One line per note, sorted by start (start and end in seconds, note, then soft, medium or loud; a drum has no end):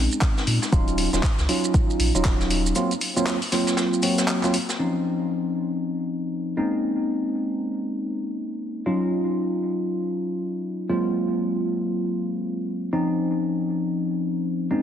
0.00 0.70 G#3 medium
0.00 0.70 C4 medium
0.00 0.70 C#4 medium
0.00 0.70 D#4 medium
0.11 closed hi-hat soft
0.11 shaker medium
0.21 kick loud
0.21 snare loud
0.21 clap loud
0.21 closed hi-hat medium
0.21 shaker medium
0.38 snare medium
0.38 shaker soft
0.47 0.59 A#2 medium
0.47 open hi-hat loud
0.47 shaker medium
0.62 snare medium
0.62 shaker medium
0.72 1.08 D#1 medium
0.72 1.09 F#3 medium
0.72 1.09 C#4 medium
0.72 1.09 D#4 medium
0.72 1.09 F4 loud
0.72 kick loud
0.72 closed hi-hat medium
0.72 shaker medium
0.88 closed hi-hat soft
0.88 closed hi-hat medium
0.88 shaker soft
0.98 open hi-hat medium
0.98 shaker medium
1.13 1.21 D#1 loud
1.13 1.24 F#3 medium
1.13 1.24 C#4 medium
1.13 1.24 D#4 medium
1.13 1.24 F4 medium
1.13 snare soft
1.13 closed hi-hat soft
1.13 shaker medium
1.23 kick medium
1.23 snare loud
1.23 clap loud
1.23 closed hi-hat medium
1.23 shaker medium
1.38 1.47 C#2 medium
1.38 snare soft
1.38 closed hi-hat soft
1.38 shaker soft
1.49 2.11 F#3 medium
1.49 2.11 C#4 medium
1.49 2.11 D#4 medium
1.49 2.11 F4 medium
1.49 open hi-hat loud
1.49 shaker medium
1.64 closed hi-hat medium
1.64 shaker medium
1.74 kick loud
1.74 closed hi-hat medium
1.74 shaker medium
1.90 closed hi-hat soft
1.90 shaker soft
2.00 2.12 A#1 medium
2.00 open hi-hat loud
2.00 shaker medium
2.15 2.72 D#1 medium
2.15 2.73 F#3 medium
2.15 2.73 C#4 medium
2.15 2.73 D#4 medium
2.15 2.73 F4 medium
2.15 closed hi-hat soft
2.15 shaker medium
2.25 kick medium
2.25 snare loud
2.25 clap loud
2.25 closed hi-hat medium
2.25 shaker medium
2.40 snare soft
2.40 shaker soft
2.50 open hi-hat loud
2.50 shaker medium
2.66 shaker medium
2.75 2.92 F#3 medium
2.75 2.92 A#3 medium
2.75 2.92 C4 medium
2.75 2.92 F4 medium
2.75 closed hi-hat medium
2.75 shaker medium
2.91 closed hi-hat medium
2.91 shaker soft
3.01 open hi-hat medium
3.01 shaker medium
3.16 3.37 F#3 loud
3.16 3.37 A#3 medium
3.16 3.37 C4 medium
3.16 3.37 F4 loud
3.16 closed hi-hat soft
3.16 shaker medium
3.26 snare loud
3.26 clap loud
3.26 closed hi-hat medium
3.26 shaker medium
3.42 open hi-hat medium
3.42 shaker soft
3.52 4.01 F#3 medium
3.52 4.01 A#3 medium
3.52 4.01 C4 medium
3.52 4.01 F4 medium
3.52 snare soft
3.52 open hi-hat loud
3.52 shaker medium
3.67 snare medium
3.67 closed hi-hat medium
3.67 shaker medium
3.77 snare loud
3.77 closed hi-hat medium
3.77 shaker medium
3.93 shaker soft
4.02 4.40 F#3 medium
4.02 4.40 A#3 medium
4.02 4.40 C4 medium
4.02 4.40 F#4 medium
4.02 open hi-hat loud
4.02 shaker medium
4.18 snare medium
4.18 shaker medium
4.28 clap loud
4.28 closed hi-hat medium
4.28 shaker medium
4.43 4.55 F#3 medium
4.43 4.54 A#3 medium
4.43 4.54 C4 medium
4.43 4.55 F4 medium
4.43 clap soft
4.43 shaker medium
4.43 shaker soft
4.54 open hi-hat loud
4.54 shaker medium
4.69 snare medium
4.69 closed hi-hat soft
4.69 shaker medium
4.79 6.55 F3 medium
4.79 6.55 C4 medium
4.79 6.55 C#4 medium
4.79 6.55 D#4 medium
6.57 8.84 G#3 medium
6.57 8.84 A#3 medium
6.57 8.84 C4 medium
6.57 8.84 C#4 medium
6.57 8.84 D#4 medium
8.86 10.87 F#3 medium
8.86 10.87 C#4 medium
8.86 10.87 D#4 medium
8.86 10.87 F4 medium
10.89 12.90 F#3 medium
10.89 12.90 G#3 medium
10.89 12.90 A#3 medium
10.89 12.90 C4 medium
10.89 12.90 F4 medium
12.93 14.68 F3 medium
12.93 14.68 C4 medium
12.93 14.68 C#4 medium
12.93 14.68 D#4 medium
14.71 14.82 G#3 medium
14.71 14.82 A#3 medium
14.71 14.82 C4 medium
14.71 14.82 C#4 medium
14.71 14.82 D#4 medium